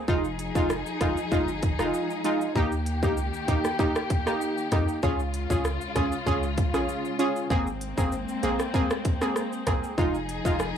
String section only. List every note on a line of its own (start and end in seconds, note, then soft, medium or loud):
0.08 2.53 F3 medium
0.08 2.53 D#4 medium
0.08 2.53 G#4 medium
2.55 5.00 D#3 medium
2.55 5.00 A#3 medium
2.55 5.00 G4 medium
5.03 7.48 C#3 medium
5.03 7.48 G#3 medium
5.03 7.48 F4 medium
7.50 9.95 G#3 medium
7.50 9.95 A#3 medium
7.50 9.95 C4 medium
9.98 10.78 F3 medium
9.98 10.78 D#4 medium
9.98 10.78 G#4 medium